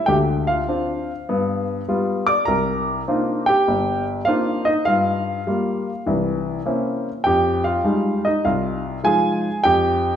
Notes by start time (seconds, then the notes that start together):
0.06 D2 D3 G4 G5
0.47 F4 F5
0.68 C4 D4 F4
1.29 G2 B3
1.88 G3 B3 F4
2.27 D5 D6
2.45 C2 A#4 A#5
3.08 A#3 C4 D4 D#4 F4
3.46 G4 G5
3.68 G1
4.25 A#3 C4 D4 D#4 F4 F5
4.65 D#4 D#5
4.85 G2 F4 F5
5.47 G3 A#3 F4
6.06 C2 E3
6.66 A#3 C4 C#4 E4
7.24 F2 G4 G5
7.64 F4 F5
7.84 G3 G#3 D#4 F4
8.25 D#4 D#5
8.45 C2 F4 F5
9.04 F3 G#3 D#4 F4 G#4 G#5
9.64 F2 G4 G5